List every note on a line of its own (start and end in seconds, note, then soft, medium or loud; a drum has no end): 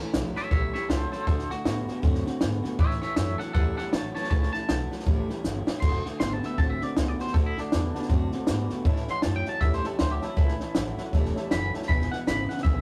0.00 0.13 A2 medium
0.00 0.13 E3 medium
0.00 0.13 A3 medium
0.00 0.13 C#4 medium
0.00 0.13 E4 medium
0.13 0.35 A#1 medium
0.13 0.34 A2 medium
0.13 0.36 E3 medium
0.13 0.35 F#3 loud
0.13 0.37 A3 medium
0.13 0.36 C#4 medium
0.13 0.35 E4 medium
0.13 snare loud
0.13 hi-hat pedal medium
0.36 0.51 A2 medium
0.36 0.51 F#3 medium
0.36 0.51 A3 soft
0.36 0.51 C#4 medium
0.36 0.51 E4 medium
0.36 0.49 C#5 medium
0.36 0.51 E5 medium
0.36 muted upright bass stroke medium
0.36 snare soft
0.51 0.73 B1 medium
0.51 0.74 A2 medium
0.51 0.72 A2 medium
0.51 0.75 E3 medium
0.51 0.73 G3 loud
0.51 0.75 A3 medium
0.51 0.74 C#4 medium
0.51 0.73 E4 medium
0.51 0.72 C#5 medium
0.51 0.73 E5 medium
0.51 kick loud
0.51 snare soft
0.73 0.88 A2 medium
0.73 0.89 G3 loud
0.73 0.88 A3 soft
0.73 0.89 C#4 medium
0.73 0.89 E4 medium
0.73 0.88 C#5 medium
0.73 0.89 E5 medium
0.73 muted upright bass stroke medium
0.73 snare soft
0.89 1.10 C#2 loud
0.89 1.10 A2 medium
0.89 1.12 E3 medium
0.89 1.10 F#3 medium
0.89 1.12 A3 medium
0.89 1.12 C#4 medium
0.89 1.11 E4 medium
0.89 1.10 A4 medium
0.89 1.12 C5 medium
0.89 snare loud
0.89 hi-hat pedal medium
1.11 1.26 A2 medium
1.11 1.26 F#3 medium
1.11 1.27 A3 soft
1.11 1.28 C#4 medium
1.11 1.27 E4 medium
1.11 1.26 A4 medium
1.11 1.26 C5 loud
1.11 muted upright bass stroke medium
1.11 snare soft
1.27 1.49 D2 medium
1.27 1.48 D3 medium
1.27 1.50 D3 medium
1.27 1.51 A3 medium
1.27 1.48 A3 loud
1.27 1.51 D4 medium
1.27 1.49 F#4 loud
1.27 1.49 A4 medium
1.27 1.50 C5 medium
1.27 kick loud
1.27 snare soft
1.39 snare soft
1.50 1.64 D3 medium
1.50 1.64 A3 medium
1.50 1.64 A3 soft
1.50 1.65 D4 medium
1.50 1.66 F#4 medium
1.50 2.61 F#4 loud
1.50 muted upright bass stroke medium
1.50 snare soft
1.65 1.87 A2 medium
1.65 1.88 D3 medium
1.65 1.86 D3 medium
1.65 1.88 A3 medium
1.65 1.86 B3 medium
1.65 1.88 D4 medium
1.65 1.86 F#4 medium
1.65 snare loud
1.65 hi-hat pedal medium
1.87 2.02 D3 medium
1.87 2.02 A3 soft
1.87 2.02 B3 medium
1.87 2.03 D4 soft
1.87 2.03 F#4 medium
1.87 muted upright bass stroke medium
1.87 snare soft
2.02 2.25 F#2 medium
2.02 2.26 D3 loud
2.02 2.24 D3 medium
2.02 2.26 A3 loud
2.02 2.24 C4 medium
2.02 2.26 D4 loud
2.02 2.24 F#4 loud
2.02 kick loud
2.02 snare soft
2.15 snare soft
2.26 2.39 D3 medium
2.26 2.40 A3 medium
2.26 2.40 C4 medium
2.26 2.41 D4 medium
2.26 2.41 F#4 medium
2.26 muted upright bass stroke medium
2.26 snare soft
2.40 2.63 G#2 medium
2.40 2.63 D3 medium
2.40 2.61 D3 medium
2.40 2.64 A3 medium
2.40 2.61 B3 medium
2.40 2.63 D4 medium
2.40 2.61 F#4 medium
2.40 snare loud
2.40 hi-hat pedal medium
2.63 2.78 D3 medium
2.63 2.79 A3 medium
2.63 2.78 B3 medium
2.63 2.79 D4 medium
2.63 2.79 F#4 medium
2.63 muted upright bass stroke medium
2.63 snare soft
2.79 2.99 A2 medium
2.79 3.01 A2 medium
2.79 3.02 A2 medium
2.79 3.00 E3 medium
2.79 3.02 E3 medium
2.79 3.02 A3 medium
2.79 3.01 C#4 medium
2.79 3.00 E4 medium
2.79 3.00 C#5 medium
2.79 3.02 E5 medium
2.79 kick loud
2.79 snare soft
2.90 snare soft
3.01 3.16 A2 medium
3.01 3.16 E3 medium
3.01 3.16 A3 soft
3.01 3.17 C#4 soft
3.01 3.17 E4 medium
3.01 3.15 C#5 medium
3.01 3.16 E5 medium
3.01 muted upright bass stroke medium
3.01 snare soft
3.16 3.39 F#2 loud
3.16 3.38 A2 medium
3.16 3.39 E3 medium
3.16 3.38 F#3 medium
3.16 3.40 A3 medium
3.16 3.39 C#4 medium
3.16 3.38 E4 medium
3.16 3.38 C#5 medium
3.16 3.39 E5 medium
3.16 snare loud
3.16 hi-hat pedal medium
3.38 3.54 A2 medium
3.38 3.54 F#3 medium
3.38 3.53 A3 soft
3.38 3.54 C#4 medium
3.38 3.55 E4 medium
3.38 3.52 A4 medium
3.38 3.53 F#5 medium
3.38 muted upright bass stroke medium
3.38 snare soft
3.53 3.77 E2 medium
3.53 3.77 A2 medium
3.53 3.76 A2 medium
3.53 3.77 E3 medium
3.53 3.76 G3 loud
3.53 3.78 A3 medium
3.53 3.76 C#4 medium
3.53 3.75 E4 medium
3.53 3.75 A4 medium
3.53 3.77 F#5 medium
3.53 kick loud
3.53 snare soft
3.76 3.92 A2 medium
3.76 3.92 G3 loud
3.76 3.92 A3 soft
3.76 3.93 C#4 medium
3.76 3.92 E4 medium
3.76 3.92 A4 medium
3.76 3.94 F#5 medium
3.76 muted upright bass stroke medium
3.76 snare soft
3.92 4.14 A1 loud
3.92 4.14 A2 medium
3.92 4.15 E3 medium
3.92 4.14 F#3 medium
3.92 4.16 A3 medium
3.92 4.15 C#4 medium
3.92 4.13 E4 medium
3.92 4.13 C#5 medium
3.92 4.14 A5 loud
3.92 snare loud
3.92 hi-hat pedal medium
4.15 4.30 A2 medium
4.15 4.30 F#3 loud
4.15 4.30 A3 medium
4.15 4.31 C#4 medium
4.15 4.30 E4 medium
4.15 4.29 C#5 medium
4.15 4.29 A5 medium
4.15 muted upright bass stroke soft
4.15 snare soft
4.24 snare soft
4.30 4.53 C#2 loud
4.30 4.53 A2 medium
4.30 4.52 A2 medium
4.30 4.54 E3 medium
4.30 4.52 E3 medium
4.30 4.54 A3 medium
4.30 4.53 C#4 medium
4.30 4.52 E4 medium
4.30 4.52 C#5 medium
4.30 4.51 A5 medium
4.30 kick loud
4.30 snare soft
4.43 snare soft
4.53 4.68 A2 medium
4.53 4.68 E3 medium
4.53 4.68 A3 soft
4.53 4.69 C#4 medium
4.53 4.69 E4 medium
4.53 5.64 A5 loud
4.53 muted upright bass stroke medium
4.53 snare soft
4.68 4.90 B1 medium
4.68 4.90 A2 medium
4.68 4.91 E3 medium
4.68 4.90 F#3 loud
4.68 4.92 A3 medium
4.68 4.91 C#4 medium
4.68 4.89 E4 medium
4.68 snare loud
4.68 hi-hat pedal loud
4.91 5.05 A2 medium
4.91 5.06 F#3 medium
4.91 5.04 A3 soft
4.91 5.05 C#4 soft
4.91 5.05 E4 medium
4.91 muted upright bass stroke medium
4.91 snare soft
5.00 snare soft
5.05 5.28 A1 medium
5.05 5.29 A2 medium
5.05 5.27 A2 medium
5.05 5.29 E3 loud
5.05 5.27 G3 loud
5.05 5.29 A3 loud
5.05 5.29 C#4 loud
5.05 5.28 E4 loud
5.05 kick loud
5.05 snare soft
5.29 5.43 A2 medium
5.29 5.43 G3 medium
5.29 5.43 A3 soft
5.29 5.44 C#4 medium
5.29 5.44 E4 medium
5.29 muted upright bass stroke medium
5.29 snare soft
5.44 5.66 G1 loud
5.44 5.65 A2 medium
5.44 5.67 E3 medium
5.44 5.65 F#3 medium
5.44 5.67 A3 medium
5.44 5.67 C#4 medium
5.44 5.65 E4 medium
5.44 snare medium
5.44 hi-hat pedal medium
5.66 5.81 A2 medium
5.66 5.81 F#3 medium
5.66 5.82 A3 medium
5.66 5.83 C#4 medium
5.66 5.82 E4 medium
5.66 muted upright bass stroke medium
5.66 snare loud
5.80 6.04 F#1 medium
5.80 6.05 D3 medium
5.80 6.03 D3 medium
5.80 6.05 A3 medium
5.80 6.03 A3 loud
5.80 6.05 D4 medium
5.80 6.06 C6 medium
5.80 kick loud
5.80 snare soft
5.80 crash medium
5.84 6.04 F#4 medium
6.05 6.19 D3 medium
6.05 6.19 A3 medium
6.05 6.20 A3 soft
6.05 6.21 D4 medium
6.05 6.20 F#4 medium
6.05 muted upright bass stroke medium
6.05 snare soft
6.20 6.42 G#1 medium
6.20 6.43 D3 medium
6.20 6.41 D3 medium
6.20 6.43 A3 medium
6.20 6.41 B3 loud
6.20 6.43 D4 medium
6.20 6.42 F#4 medium
6.20 6.33 C6 medium
6.20 snare loud
6.20 hi-hat pedal loud
6.33 6.45 A5 medium
6.43 6.57 D3 medium
6.43 6.58 A3 soft
6.43 6.57 B3 medium
6.43 6.59 D4 soft
6.43 6.58 F#4 medium
6.43 6.58 E5 loud
6.43 muted upright bass stroke medium
6.43 snare soft
6.58 6.80 A1 medium
6.58 6.79 D3 medium
6.58 6.81 D3 medium
6.58 6.82 A3 medium
6.58 6.79 C4 medium
6.58 6.81 D4 medium
6.58 6.80 F#4 medium
6.58 6.71 A5 medium
6.58 kick loud
6.58 snare soft
6.70 6.83 E5 medium
6.81 6.95 D3 medium
6.81 6.96 A3 soft
6.81 6.95 C4 medium
6.81 6.97 D4 medium
6.81 6.96 F#4 medium
6.81 6.96 D5 medium
6.81 muted upright bass stroke medium
6.81 snare soft
6.96 7.19 C#2 medium
6.96 7.19 D3 medium
6.96 7.17 D3 medium
6.96 7.19 A3 medium
6.96 7.18 B3 medium
6.96 7.19 D4 medium
6.96 7.18 F#4 medium
6.96 7.08 C5 loud
6.96 snare loud
6.96 hi-hat pedal medium
7.08 7.21 D5 loud
7.19 7.33 D3 medium
7.19 7.34 A3 soft
7.19 7.33 B3 medium
7.19 7.34 D4 medium
7.19 7.34 F#4 medium
7.19 7.34 C5 loud
7.19 muted upright bass stroke medium
7.19 snare soft
7.27 snare soft
7.34 7.56 D2 medium
7.34 7.57 D3 medium
7.34 7.55 D3 medium
7.34 7.57 A3 medium
7.34 7.55 A3 loud
7.34 7.57 D4 medium
7.34 7.55 F#4 loud
7.34 7.46 A4 loud
7.34 kick loud
7.34 snare soft
7.46 7.59 E4 medium
7.57 7.71 D3 medium
7.57 7.71 A3 medium
7.57 7.72 A3 soft
7.57 7.72 D4 medium
7.57 8.70 D4 loud
7.57 7.72 F#4 medium
7.57 muted upright bass stroke medium
7.57 snare soft
7.72 7.95 E2 medium
7.72 7.95 D3 medium
7.72 7.93 D3 medium
7.72 7.95 A3 medium
7.72 7.93 B3 medium
7.72 7.95 D4 medium
7.72 7.93 F#4 medium
7.72 snare loud
7.72 hi-hat pedal loud
7.95 8.09 D3 medium
7.95 8.09 A3 soft
7.95 8.09 B3 medium
7.95 8.10 D4 medium
7.95 8.10 F#4 medium
7.95 muted upright bass stroke medium
7.95 snare soft
8.02 snare soft
8.09 8.32 F#2 loud
8.09 8.33 D3 medium
8.09 8.31 D3 medium
8.09 8.33 A3 loud
8.09 8.31 C4 medium
8.09 8.33 D4 medium
8.09 8.31 F#4 loud
8.09 kick loud
8.09 snare soft
8.32 8.47 D3 medium
8.32 8.47 A3 medium
8.32 8.47 C4 medium
8.32 8.48 D4 medium
8.32 8.48 F#4 medium
8.32 muted upright bass stroke medium
8.32 snare soft
8.47 8.70 G#2 loud
8.47 8.71 D3 medium
8.47 8.68 D3 medium
8.47 8.71 A3 medium
8.47 8.69 B3 medium
8.47 8.70 D4 medium
8.47 8.69 F#4 medium
8.47 snare loud
8.47 hi-hat pedal medium
8.70 8.85 D3 medium
8.70 8.85 A3 medium
8.70 8.85 B3 medium
8.70 8.86 D4 medium
8.70 8.86 F#4 medium
8.70 muted upright bass stroke medium
8.70 snare soft
8.85 9.07 A2 medium
8.85 9.08 A2 loud
8.85 9.07 A2 loud
8.85 9.09 E3 medium
8.85 9.07 E3 loud
8.85 9.09 A3 loud
8.85 9.08 C#4 loud
8.85 9.07 E4 loud
8.85 8.99 C#5 loud
8.85 9.00 E5 loud
8.85 9.00 A5 loud
8.85 kick loud
8.85 snare soft
8.96 snare soft
9.07 9.22 A2 medium
9.07 9.23 E3 medium
9.07 9.23 A3 medium
9.07 9.23 C#4 medium
9.07 9.24 E4 medium
9.07 9.18 C#5 medium
9.07 9.18 E5 medium
9.07 9.18 F#5 medium
9.07 9.22 C6 loud
9.07 muted upright bass stroke medium
9.07 snare soft
9.22 9.46 F#2 medium
9.22 9.44 A2 medium
9.22 9.46 E3 medium
9.22 9.45 F#3 loud
9.22 9.47 A3 medium
9.22 9.46 C#4 medium
9.22 9.45 E4 medium
9.22 9.37 C#5 medium
9.22 9.37 E5 medium
9.22 9.35 A5 loud
9.22 9.38 A5 medium
9.22 snare loud
9.22 hi-hat pedal medium
9.36 9.48 G5 loud
9.45 9.61 A2 medium
9.45 9.61 F#3 medium
9.45 9.61 A3 medium
9.45 9.62 C#4 soft
9.45 9.62 E4 medium
9.45 9.55 C#5 medium
9.45 9.56 E5 medium
9.45 9.56 G#5 medium
9.45 9.61 A5 loud
9.45 muted upright bass stroke medium
9.45 snare soft
9.61 9.83 E2 loud
9.61 9.84 A2 medium
9.61 9.83 A2 medium
9.61 9.85 E3 medium
9.61 9.83 G3 medium
9.61 9.85 A3 loud
9.61 9.84 C#4 loud
9.61 9.83 E4 medium
9.61 9.75 C#5 medium
9.61 9.73 E5 loud
9.61 9.76 E5 medium
9.61 9.76 A5 medium
9.61 kick loud
9.61 snare soft
9.73 9.86 C5 loud
9.73 snare soft
9.84 9.98 A2 medium
9.84 9.99 G3 medium
9.84 9.99 A3 soft
9.84 10.00 C#4 medium
9.84 9.99 E4 medium
9.84 9.99 A4 medium
9.84 9.93 C#5 medium
9.84 9.94 E5 medium
9.84 9.94 A5 medium
9.84 muted upright bass stroke medium
9.84 snare soft
9.98 10.22 D2 loud
9.98 10.20 A2 medium
9.98 10.22 E3 medium
9.98 10.20 F#3 medium
9.98 10.23 A3 medium
9.98 10.22 C#4 medium
9.98 10.20 E4 medium
9.98 10.12 C5 loud
9.98 10.13 C#5 loud
9.98 10.13 E5 medium
9.98 10.14 A5 loud
9.98 snare loud
9.98 hi-hat pedal medium
10.11 10.24 G4 loud
10.21 10.36 A2 medium
10.21 10.37 F#3 medium
10.21 10.36 A3 medium
10.21 10.36 C#4 soft
10.21 10.37 E4 medium
10.21 10.36 E4 loud
10.21 10.31 C#5 loud
10.21 10.31 E5 medium
10.21 10.31 A5 loud
10.21 muted upright bass stroke medium
10.21 snare soft
10.36 10.59 C#2 medium
10.36 10.60 A2 medium
10.36 10.58 A2 medium
10.36 10.60 E3 medium
10.36 10.58 E3 medium
10.36 10.60 A3 medium
10.36 10.60 C#4 medium
10.36 11.11 E4 loud
10.36 10.58 E4 loud
10.36 10.50 C#5 medium
10.36 10.51 E5 medium
10.36 10.51 A5 loud
10.36 kick loud
10.36 snare soft
10.48 snare soft
10.60 10.74 A2 medium
10.60 10.75 E3 loud
10.60 10.74 A3 medium
10.60 10.75 C#4 medium
10.60 10.75 E4 medium
10.60 10.69 C#5 medium
10.60 10.69 E5 medium
10.60 10.70 A5 medium
10.60 muted upright bass stroke medium
10.60 snare soft
10.74 10.98 A1 medium
10.74 10.96 A2 medium
10.74 10.98 E3 medium
10.74 10.96 F#3 loud
10.74 10.98 A3 medium
10.74 10.97 C#4 medium
10.74 10.96 E4 medium
10.74 10.89 C#5 medium
10.74 10.89 E5 medium
10.74 10.90 A5 medium
10.74 snare loud
10.74 hi-hat pedal loud
10.97 11.12 A2 medium
10.97 11.12 F#3 medium
10.97 11.13 A3 medium
10.97 11.13 C#4 medium
10.97 11.13 E4 medium
10.97 11.07 C#5 medium
10.97 11.07 E5 medium
10.97 11.08 F#5 medium
10.97 muted upright bass stroke medium
10.97 snare soft
11.12 11.35 E1 medium
11.12 11.36 A2 medium
11.12 11.34 A2 medium
11.12 11.36 E3 medium
11.12 11.35 G3 medium
11.12 11.36 A3 loud
11.12 11.36 C#4 loud
11.12 11.34 E4 loud
11.12 11.26 C#5 medium
11.12 11.27 E5 medium
11.12 11.27 A5 loud
11.12 kick loud
11.12 snare soft
11.25 snare soft
11.35 11.50 A2 medium
11.35 11.50 G3 medium
11.35 11.51 A3 medium
11.35 11.52 C#4 medium
11.35 11.51 E4 medium
11.35 11.44 C#5 loud
11.35 11.45 E5 medium
11.35 11.45 A5 loud
11.35 muted upright bass stroke medium
11.35 snare soft
11.50 11.73 F#1 loud
11.50 11.72 A2 medium
11.50 11.74 E3 medium
11.50 11.72 F#3 loud
11.50 11.74 A3 medium
11.50 11.73 C#4 medium
11.50 11.72 E4 medium
11.50 11.64 C#5 medium
11.50 11.65 E5 medium
11.50 11.65 G#5 loud
11.50 11.73 B5 loud
11.50 snare loud
11.50 hi-hat pedal medium
11.73 11.88 A2 medium
11.73 11.88 F#3 medium
11.73 11.89 A3 soft
11.73 11.89 C#4 medium
11.73 11.88 E4 medium
11.73 11.83 C#5 medium
11.73 11.83 E5 medium
11.73 11.83 A5 loud
11.73 muted upright bass stroke medium
11.73 snare soft
11.82 snare soft
11.88 12.11 E1 medium
11.88 12.11 E2 medium
11.88 12.10 E2 medium
11.88 12.11 B2 medium
11.88 12.10 B2 medium
11.88 12.12 E3 medium
11.88 12.11 G#3 medium
11.88 12.10 B3 medium
11.88 12.10 E4 medium
11.88 12.02 B4 loud
11.88 12.03 E5 medium
11.88 12.03 G#5 loud
11.88 12.10 B5 medium
11.88 kick loud
11.88 snare soft
12.01 snare soft
12.11 12.26 E2 medium
12.11 12.26 B2 medium
12.11 12.25 E3 soft
12.11 12.26 G#3 medium
12.11 12.27 B3 medium
12.11 12.26 E4 medium
12.11 12.20 B4 medium
12.11 12.21 E5 medium
12.11 12.26 F#5 medium
12.11 12.21 G#5 medium
12.11 muted upright bass stroke medium
12.11 snare soft
12.26 12.49 G#1 medium
12.26 12.47 E2 medium
12.26 12.47 C#3 medium
12.26 12.49 E3 medium
12.26 12.49 G#3 medium
12.26 12.48 B3 medium
12.26 12.47 E4 medium
12.26 12.41 B4 medium
12.26 12.41 E5 medium
12.26 12.41 G#5 medium
12.26 12.49 B5 loud
12.26 snare loud
12.26 hi-hat pedal medium
12.48 12.63 E2 medium
12.48 12.64 C#3 medium
12.48 12.64 E3 soft
12.48 12.65 G#3 soft
12.48 12.64 B3 medium
12.48 12.64 E4 medium
12.48 12.58 B4 medium
12.48 12.59 E5 medium
12.48 12.63 F#5 medium
12.48 12.59 G#5 medium
12.48 muted upright bass stroke medium
12.48 snare soft
12.58 snare soft
12.63 12.81 B1 medium
12.63 12.81 E2 medium
12.63 12.81 B2 medium
12.63 12.81 D3 medium
12.63 12.81 E3 medium
12.63 12.81 G#3 medium
12.63 12.81 B3 medium
12.63 12.81 E4 medium
12.63 12.78 B4 medium
12.63 12.81 E5 medium
12.63 12.78 E5 medium
12.63 12.79 G#5 medium
12.63 kick loud
12.63 snare soft